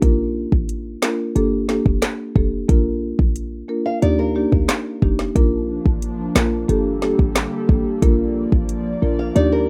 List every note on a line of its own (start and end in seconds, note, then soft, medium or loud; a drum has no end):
0.02 0.47 A#1 loud
0.02 0.64 A#3 medium
0.02 0.64 D4 medium
0.02 0.64 F4 medium
0.02 0.64 A#4 loud
0.02 kick loud
0.02 closed hi-hat medium
0.52 0.97 A1 medium
0.52 kick medium
0.69 closed hi-hat medium
1.02 1.24 A#3 medium
1.02 1.24 D4 medium
1.02 1.24 F4 medium
1.02 1.24 A#4 medium
1.02 snare loud
1.02 clap medium
1.35 1.80 G1 loud
1.35 1.66 A#3 loud
1.35 1.66 D4 medium
1.35 1.66 G4 medium
1.35 1.67 A4 loud
1.35 closed hi-hat medium
1.69 1.91 A#3 medium
1.69 1.91 D4 medium
1.69 1.91 G4 medium
1.69 1.91 A4 medium
1.69 snare medium
1.86 2.00 F1 medium
1.86 kick medium
2.02 snare loud
2.02 clap loud
2.02 closed hi-hat medium
2.35 2.65 F1 loud
2.35 2.66 A#3 medium
2.35 2.66 D4 medium
2.35 2.66 G4 medium
2.35 2.67 A4 medium
2.35 kick medium
2.69 3.13 A#1 loud
2.69 3.30 A#3 medium
2.69 3.30 D4 medium
2.69 3.30 F4 medium
2.69 3.30 A#4 loud
2.69 kick loud
2.69 closed hi-hat medium
3.19 3.63 A#1 medium
3.19 kick medium
3.36 closed hi-hat medium
3.69 3.91 A#3 medium
3.69 3.91 D4 medium
3.69 3.91 F4 medium
3.69 3.91 A#4 medium
3.86 4.02 F5 medium
4.02 4.47 D#2 loud
4.02 4.33 A#3 medium
4.02 4.33 D4 medium
4.02 4.33 D#4 medium
4.02 4.33 G4 loud
4.02 4.18 D5 medium
4.02 closed hi-hat medium
4.19 5.15 A#4 medium
4.35 4.57 A#3 medium
4.35 4.57 D4 medium
4.35 4.58 D#4 medium
4.35 4.58 G4 medium
4.52 4.67 D2 medium
4.52 kick medium
4.69 cross-stick loud
4.69 snare loud
4.69 clap loud
4.69 closed hi-hat medium
5.02 5.32 F1 medium
5.02 5.33 A#3 medium
5.02 5.33 D4 medium
5.02 5.33 D#4 medium
5.02 5.33 G4 medium
5.02 kick medium
5.19 snare medium
5.36 5.80 A#1 loud
5.36 6.68 F3 medium
5.36 5.97 A#3 medium
5.36 9.69 A#3 medium
5.36 5.97 D4 medium
5.36 6.68 D4 medium
5.36 5.97 F4 medium
5.36 5.97 A#4 loud
5.36 kick loud
5.36 closed hi-hat medium
5.86 6.30 A1 medium
5.86 kick medium
6.02 closed hi-hat medium
6.35 6.65 A#1 medium
6.35 6.57 A#3 medium
6.35 6.58 D4 medium
6.35 6.58 F4 medium
6.35 6.58 A#4 medium
6.35 snare loud
6.35 clap loud
6.69 7.13 G1 loud
6.69 8.01 D3 medium
6.69 8.01 G3 medium
6.69 7.00 A#3 medium
6.69 7.00 D4 medium
6.69 7.00 G4 medium
6.69 8.01 G4 medium
6.69 7.00 A4 loud
6.69 8.01 A4 medium
6.69 closed hi-hat medium
7.02 7.24 A#3 medium
7.02 7.24 D4 medium
7.02 7.24 G4 medium
7.02 7.24 A4 medium
7.02 snare medium
7.19 7.49 A1 medium
7.19 kick medium
7.36 snare loud
7.36 clap medium
7.36 closed hi-hat medium
7.69 7.84 A1 medium
7.69 8.00 A#3 medium
7.69 8.00 D4 medium
7.69 8.00 G4 medium
7.69 8.00 A4 medium
7.69 kick medium
8.02 8.47 A#1 loud
8.02 9.35 F3 medium
8.02 8.64 A#3 medium
8.02 8.64 D4 medium
8.02 8.64 F4 medium
8.02 8.64 A#4 loud
8.02 9.69 D5 medium
8.02 kick loud
8.02 closed hi-hat medium
8.52 8.97 A1 medium
8.52 kick medium
8.69 closed hi-hat medium
9.02 9.32 A#1 medium
9.02 9.24 A#3 medium
9.02 9.24 D4 medium
9.02 9.24 F4 medium
9.02 9.24 A#4 medium
9.19 9.35 F5 medium
9.36 9.69 D#2 loud
9.36 9.69 D#3 medium
9.36 9.69 G3 medium
9.36 9.66 A#3 medium
9.36 9.66 D4 medium
9.36 9.67 D#4 medium
9.36 9.69 G4 medium
9.36 9.67 G4 loud
9.36 9.52 D5 medium
9.36 closed hi-hat medium
9.52 9.69 A#4 medium